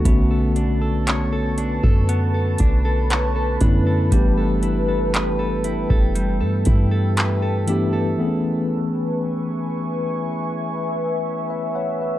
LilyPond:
<<
  \new Staff \with { instrumentName = "Ambient pad" } { \time 4/4 \key a \major \tempo 4 = 59 << { <a'' cis'''>2 b''2 | <g'' e'''>1 | <e'' gis'' cis'''>1 | } \\ { b'1~ | b'1 | b'1 | } >> }
  \new Staff \with { instrumentName = "Clean electric guitar" } { \time 4/4 \key a \major b16 a'16 d'16 a'16 cis''16 a'16 d'16 a'16 b16 a'16 d'16 a'16 cis''16 a'16 d'16 a'16 | g16 a'16 e'16 a'16 b'16 a'16 e'16 a'16 g16 a'16 e'16 a'16 b'16 a'16 e'16 a'16 | r1 | }
  \new Staff \with { instrumentName = "Tine electric piano" } { \time 4/4 \key a \major <d a b cis' fis'>4. r2 <d a b cis' e'>8 | <e a b d' g'>4. r2 <e a b d' g'>8 | <e a b c' cis' gis'>4. r4. r16 <b' e''>16 <cis'' fis''>16 <b' e''>16 | }
  \new Staff \with { instrumentName = "808-style bass" } { \clef bass \time 4/4 \key a \major b,,4.~ b,,16 fis,8. b,,4 fis,8 | g,,4.~ g,,16 fis,,8 g,16 g,4. | r1 | }
  \new DrumStaff \with { instrumentName = "Drums" } \drummode { \time 4/4 <hh bd>8 hh8 <hc hh>8 hh16 bd16 hh8 <hh bd>8 <hc hh>8 <hh bd>8 | <hh bd>8 hh8 <hc hh>8 hh16 bd16 hh8 <hh bd>8 <hc hh>8 hh8 | r4 r4 r4 r4 | }
>>